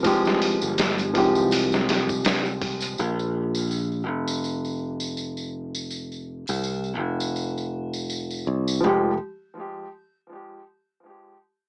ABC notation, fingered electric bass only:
X:1
M:4/4
L:1/16
Q:"Swing 16ths" 1/4=82
K:Fm
V:1 name="Fingered electric bass" clef=bass
C,,3 G,,,3 C,,8- C,,2 | B,,,6 F,,,8- F,,,2- | F,,,3 C,,3 F,,,8 C,,2 | F,,,2 z12 z2 |]